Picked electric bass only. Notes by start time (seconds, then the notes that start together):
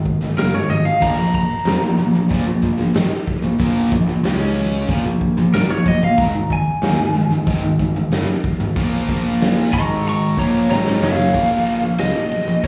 Already playing: G#1
0.22 G#1
0.38 F#1
0.54 G#1
0.70 G#1
0.86 G#1
1.02 A#1
1.18 A#1
1.65 F2
1.81 A#1
1.97 A#1
2.14 A#1
2.31 A#1
2.46 A#1
2.63 A#1
2.78 A#1
2.94 G#1
3.42 A#1
3.60 A#1
3.92 A#1
4.07 A#1
4.23 C#2
4.89 A#1
5.05 A#1
5.37 A#1
5.54 G#1
5.69 A#1
5.86 A#1
6.02 A#1
6.18 G#1
6.33 G#1
6.82 D#2
6.98 G#1
7.15 G#1
7.31 G#1
7.47 G#1
7.63 G#1
7.79 G#1
7.95 G#1
8.11 F#1
8.60 G#1
8.76 A#1
9.08 A#1
9.73 G#1
10.37 A#1
10.70 G#1
11.02 F#1
11.34 A#1
11.82 A#1
11.99 C#2
12.15 A#1
12.31 muted picked electric bass stroke
12.47 A#1
12.63 C2